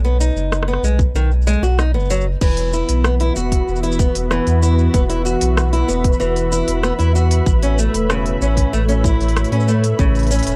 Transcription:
0.00 0.30 B1 loud
0.05 0.19 B3 medium
0.05 shaker soft
0.20 0.66 D#4 medium
0.20 shaker medium
0.35 0.78 F#1 medium
0.35 shaker soft
0.52 cross-stick medium
0.52 shaker soft
0.63 cross-stick medium
0.68 0.82 B3 medium
0.68 shaker soft
0.73 cross-stick medium
0.83 1.08 B1 medium
0.83 0.99 G#3 medium
0.83 shaker medium
0.99 kick medium
0.99 shaker soft
1.14 1.56 B1 loud
1.14 1.30 D#3 medium
1.14 shaker soft
1.31 shaker soft
1.42 shaker soft
1.47 1.62 G#3 loud
1.47 shaker medium
1.62 1.95 B1 medium
1.62 1.77 F#4 medium
1.62 shaker soft
1.79 1.93 D#4 medium
1.79 cross-stick medium
1.79 shaker soft
1.94 2.36 F#1 medium
1.94 2.08 B3 medium
1.94 shaker soft
2.00 shaker soft
2.05 shaker soft
2.10 2.24 F#3 loud
2.10 shaker medium
2.21 shaker soft
2.41 2.83 E1 loud
2.41 7.47 E3 medium
2.41 2.72 E3 medium
2.41 10.56 B4 medium
2.41 10.56 B5 medium
2.41 kick loud
2.41 crash loud
2.41 shaker soft
2.54 8.24 B3 medium
2.54 open hi-hat soft
2.54 shaker soft
2.73 3.03 E4 medium
2.73 shaker medium
2.89 3.31 B1 medium
2.89 open hi-hat medium
2.89 shaker soft
3.04 3.14 B3 medium
3.04 cross-stick loud
3.04 shaker soft
3.20 3.35 E4 medium
3.20 10.56 E5 medium
3.20 open hi-hat soft
3.36 3.61 E1 medium
3.36 3.82 F#4 medium
3.36 shaker medium
3.48 9.49 F#4 medium
3.48 kick medium
3.48 open hi-hat medium
3.48 shaker soft
3.68 4.10 E1 medium
3.68 shaker soft
3.76 shaker soft
3.83 3.98 E4 medium
3.83 open hi-hat soft
3.83 shaker soft
3.92 shaker soft
3.99 4.14 B3 medium
3.99 kick loud
3.99 shaker medium
4.15 4.40 E1 loud
4.15 open hi-hat medium
4.15 shaker soft
4.31 4.61 E3 medium
4.31 cross-stick medium
4.31 shaker soft
4.47 4.89 E2 loud
4.47 open hi-hat soft
4.47 shaker soft
4.63 4.93 E4 medium
4.63 shaker medium
4.78 shaker soft
4.94 5.36 E1 loud
4.94 5.03 B3 medium
4.94 kick loud
4.94 open hi-hat medium
4.94 shaker soft
5.09 5.24 E4 medium
5.09 open hi-hat soft
5.09 shaker soft
5.25 5.71 F#4 medium
5.25 shaker medium
5.41 5.83 B1 medium
5.41 open hi-hat medium
5.41 shaker soft
5.57 cross-stick loud
5.57 shaker soft
5.73 5.87 E4 medium
5.73 open hi-hat soft
5.88 6.14 E1 loud
5.88 6.04 B3 medium
5.88 shaker medium
6.04 kick loud
6.04 open hi-hat medium
6.13 shaker soft
6.20 6.62 E1 loud
6.20 6.50 E3 medium
6.20 shaker soft
6.36 open hi-hat soft
6.36 shaker soft
6.52 6.82 E4 medium
6.52 shaker medium
6.68 6.92 E1 medium
6.68 open hi-hat soft
6.68 shaker soft
6.83 6.92 B3 medium
6.83 cross-stick medium
6.83 shaker soft
6.99 7.41 E2 medium
6.99 7.13 E4 medium
6.99 open hi-hat soft
6.99 shaker soft
7.15 7.47 F#4 medium
7.15 shaker medium
7.31 open hi-hat medium
7.31 shaker soft
7.46 7.88 A1 loud
7.46 10.56 A2 medium
7.46 kick loud
7.46 shaker soft
7.62 7.77 C#4 medium
7.62 10.56 C#5 medium
7.62 open hi-hat soft
7.62 shaker soft
7.73 10.56 A3 medium
7.79 7.93 A3 medium
7.79 shaker medium
7.94 8.36 E1 medium
7.94 open hi-hat soft
7.94 shaker soft
8.10 8.40 C#3 medium
8.10 cross-stick loud
8.10 shaker soft
8.26 open hi-hat soft
8.41 8.66 A1 loud
8.41 8.72 C#4 medium
8.41 shaker medium
8.57 kick medium
8.57 open hi-hat soft
8.57 shaker soft
8.73 9.15 A1 medium
8.73 8.82 A3 medium
8.73 shaker soft
8.89 9.03 C#4 medium
8.89 open hi-hat soft
8.89 shaker soft
9.04 9.50 E4 medium
9.04 kick loud
9.04 shaker medium
9.20 9.45 A1 loud
9.20 open hi-hat soft
9.20 shaker soft
9.29 open hi-hat soft
9.36 cross-stick loud
9.36 open hi-hat soft
9.36 shaker soft
9.44 open hi-hat soft
9.52 9.94 A2 loud
9.52 9.66 C#4 medium
9.52 open hi-hat soft
9.60 shaker soft
9.68 9.83 A3 medium
9.68 shaker medium
9.84 open hi-hat medium
9.84 shaker soft
9.99 10.41 A1 loud
9.99 10.29 C#3 medium
9.99 kick loud
9.99 shaker soft
10.15 open hi-hat soft
10.15 shaker soft
10.19 open hi-hat soft
10.23 open hi-hat soft
10.27 open hi-hat soft
10.31 10.56 C#4 medium
10.31 open hi-hat soft
10.31 shaker medium
10.35 open hi-hat soft
10.39 open hi-hat soft
10.43 10.56 E1 medium
10.43 open hi-hat soft
10.47 open hi-hat soft
10.47 shaker soft
10.51 shaker soft

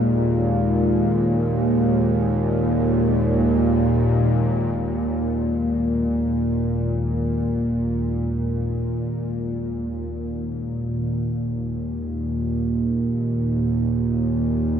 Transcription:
0.00 4.76 D#2 medium
0.00 4.76 A#2 medium
0.00 4.81 G#3 medium
0.00 4.79 A#3 medium
0.00 4.79 D#4 medium
0.00 4.81 G#4 medium
0.00 4.77 F5 medium
4.77 14.80 D#2 medium
4.77 14.80 A#2 medium

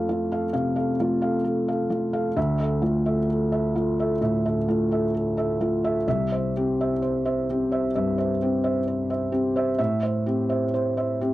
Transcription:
0.00 0.49 F2 medium
0.00 0.09 A3 soft
0.00 0.09 F4 soft
0.00 0.32 A4 soft
0.00 0.32 F5 medium
0.09 0.45 A3 soft
0.09 0.45 F4 medium
0.32 0.51 A4 soft
0.32 0.52 F5 medium
0.53 0.89 C3 medium
0.53 0.75 F5 medium
0.76 0.96 A4 soft
0.76 0.96 F5 soft
1.00 1.36 A3 soft
1.00 1.36 F4 medium
1.21 1.42 A4 soft
1.21 1.42 F5 medium
1.44 1.67 A4 soft
1.68 1.89 A4 soft
1.68 1.89 F5 soft
1.90 2.27 A3 soft
1.90 2.27 F4 soft
2.13 2.34 A4 medium
2.13 2.34 F5 medium
2.36 4.17 D2 medium
2.36 2.59 E5 medium
2.60 2.80 A4 soft
2.60 2.81 E5 soft
2.82 3.19 A3 soft
2.82 3.19 F4 soft
3.06 3.26 A4 soft
3.06 3.27 E5 medium
3.30 3.51 A4 soft
3.52 3.73 A4 soft
3.52 3.73 E5 medium
3.76 4.12 A3 soft
3.76 4.12 F4 soft
3.99 4.19 A4 soft
3.99 4.20 E5 medium
4.21 4.58 A2 soft
4.21 4.44 E5 medium
4.46 4.66 A4 soft
4.46 4.66 E5 soft
4.68 5.05 A3 soft
4.68 5.05 F4 soft
4.91 5.11 A4 medium
4.91 5.12 E5 medium
5.14 5.36 A4 soft
5.37 5.57 A4 soft
5.37 5.58 E5 medium
5.60 5.97 A3 soft
5.60 5.97 F4 soft
5.84 6.04 A4 medium
5.84 6.04 E5 medium
6.08 7.89 C2 medium
6.08 6.31 E5 medium
6.32 6.52 C5 soft
6.32 6.52 E5 soft
6.57 6.92 C4 medium
6.57 6.92 G4 medium
6.81 6.99 C5 soft
6.81 6.99 E5 medium
7.02 7.24 C5 medium
7.25 7.45 C5 medium
7.25 7.45 E5 medium
7.50 7.85 C4 soft
7.50 7.85 G4 medium
7.72 7.91 C5 medium
7.72 7.92 E5 medium
7.96 8.31 G2 medium
7.96 8.17 E5 medium
8.18 8.38 C5 soft
8.18 8.38 E5 medium
8.42 8.78 C4 soft
8.42 8.78 G4 soft
8.64 8.84 C5 medium
8.64 8.84 E5 medium
8.87 9.08 C5 soft
9.10 9.30 C5 soft
9.10 9.30 E5 medium
9.32 9.69 C4 soft
9.32 9.69 G4 medium
9.56 9.77 C5 medium
9.56 9.77 E5 medium
9.78 11.34 A2 medium
9.78 10.01 E5 medium
10.03 10.24 C5 medium
10.03 10.24 E5 soft
10.26 10.64 C4 medium
10.26 10.64 G4 medium
10.49 10.71 C5 medium
10.49 10.71 E5 medium
10.74 10.96 C5 medium
10.97 11.19 C5 medium
10.97 11.19 E5 medium
11.21 11.34 C4 medium
11.21 11.34 G4 medium

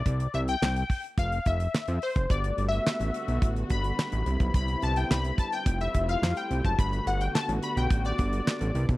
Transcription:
0.00 0.35 D5 medium
0.06 0.28 C2 loud
0.06 kick loud
0.06 closed hi-hat medium
0.20 closed hi-hat medium
0.34 0.56 C2 medium
0.34 0.41 E5 loud
0.34 closed hi-hat medium
0.48 1.01 G5 loud
0.48 closed hi-hat medium
0.62 0.84 C2 medium
0.62 snare loud
0.62 clap medium
0.76 closed hi-hat medium
0.90 kick medium
0.90 open hi-hat medium
1.04 closed hi-hat medium
1.18 1.40 F1 loud
1.18 1.47 F5 loud
1.18 kick loud
1.18 closed hi-hat medium
1.32 closed hi-hat soft
1.46 1.68 F1 medium
1.46 2.04 E5 loud
1.46 kick medium
1.46 closed hi-hat medium
1.60 closed hi-hat medium
1.74 snare loud
1.74 clap medium
1.88 1.99 F2 loud
1.88 closed hi-hat soft
2.02 2.31 C5 loud
2.02 open hi-hat medium
2.16 2.27 F#1 medium
2.16 kick loud
2.16 closed hi-hat soft
2.30 2.52 G1 loud
2.30 5.63 D3 medium
2.30 8.97 G3 medium
2.30 4.24 A3 medium
2.30 4.24 B3 medium
2.30 4.24 F#4 medium
2.30 2.65 D5 loud
2.30 kick loud
2.30 closed hi-hat medium
2.44 closed hi-hat soft
2.58 2.80 G1 loud
2.58 closed hi-hat medium
2.68 3.48 E5 loud
2.68 closed hi-hat medium
2.87 snare loud
2.87 clap medium
3.00 3.11 A1 medium
3.00 closed hi-hat medium
3.14 closed hi-hat medium
3.28 3.39 B1 medium
3.28 closed hi-hat medium
3.42 3.64 A1 medium
3.42 kick loud
3.42 closed hi-hat medium
3.56 closed hi-hat soft
3.70 3.92 G1 medium
3.70 4.54 B5 loud
3.70 kick medium
3.70 closed hi-hat medium
3.84 closed hi-hat medium
3.99 snare loud
3.99 clap medium
4.12 4.23 A1 loud
4.12 closed hi-hat medium
4.26 4.37 C2 medium
4.26 5.65 B3 medium
4.26 5.65 C4 medium
4.26 5.65 E4 medium
4.26 closed hi-hat medium
4.40 4.51 B1 medium
4.40 kick medium
4.40 closed hi-hat soft
4.54 4.76 C2 loud
4.54 4.84 B5 loud
4.54 kick loud
4.54 closed hi-hat medium
4.68 closed hi-hat soft
4.82 5.04 C2 loud
4.82 4.97 A5 loud
4.82 closed hi-hat medium
4.96 5.11 G5 medium
4.96 closed hi-hat medium
5.10 5.32 C2 medium
5.10 5.40 B5 loud
5.10 snare loud
5.10 clap medium
5.24 closed hi-hat medium
5.38 5.53 A5 loud
5.38 kick medium
5.38 closed hi-hat medium
5.52 5.79 G5 loud
5.52 closed hi-hat medium
5.66 5.88 F1 loud
5.66 8.72 A3 medium
5.66 6.77 C4 medium
5.66 6.77 E4 medium
5.66 6.78 F4 medium
5.66 kick loud
5.66 closed hi-hat medium
5.81 6.10 E5 loud
5.81 closed hi-hat soft
5.94 6.16 F1 medium
5.94 kick medium
5.94 closed hi-hat medium
6.09 6.38 F5 loud
6.09 closed hi-hat medium
6.22 6.34 F2 loud
6.22 snare loud
6.22 clap medium
6.37 6.66 G5 loud
6.37 closed hi-hat soft
6.51 6.62 C2 medium
6.51 closed hi-hat medium
6.65 6.76 F#1 loud
6.65 6.78 A5 medium
6.65 kick medium
6.65 closed hi-hat soft
6.78 7.01 G1 loud
6.78 8.73 D3 medium
6.78 8.97 B3 medium
6.78 8.73 F#4 medium
6.78 7.05 B5 loud
6.78 kick loud
6.78 closed hi-hat medium
6.93 closed hi-hat soft
7.07 7.29 G1 loud
7.07 7.21 F#5 loud
7.07 closed hi-hat medium
7.21 7.35 G5 medium
7.21 closed hi-hat medium
7.35 7.47 A5 loud
7.35 snare loud
7.35 clap medium
7.49 7.60 A1 medium
7.49 closed hi-hat medium
7.63 7.78 B5 medium
7.63 closed hi-hat medium
7.77 7.88 B1 loud
7.77 8.06 G5 loud
7.77 closed hi-hat medium
7.91 8.13 A1 medium
7.91 kick loud
7.91 closed hi-hat medium
8.05 8.85 D5 medium
8.05 closed hi-hat soft
8.18 8.41 G1 medium
8.18 kick medium
8.18 closed hi-hat medium
8.33 closed hi-hat medium
8.47 snare loud
8.47 clap medium
8.61 8.72 A1 loud
8.61 closed hi-hat medium
8.75 8.86 C2 loud
8.75 8.97 C3 medium
8.75 8.97 E3 medium
8.75 8.97 D4 medium
8.75 closed hi-hat medium
8.89 8.97 B1 medium
8.89 kick medium
8.89 closed hi-hat soft

